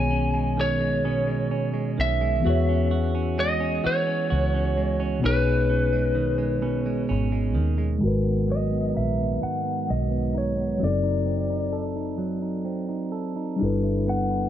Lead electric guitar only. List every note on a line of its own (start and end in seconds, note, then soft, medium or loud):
0.00 0.62 G#5 loud
0.61 2.03 C#5 medium
2.01 3.35 E5 medium
3.40 3.86 D#5 medium
3.87 5.25 C#5 medium
5.26 7.06 B4 medium
8.52 8.93 D#5 medium
8.97 9.43 E5 medium
9.43 9.90 F#5 medium
9.90 10.37 D#5 medium
10.38 10.84 C#5 medium
10.84 11.83 D5 medium
14.09 14.49 F#5 medium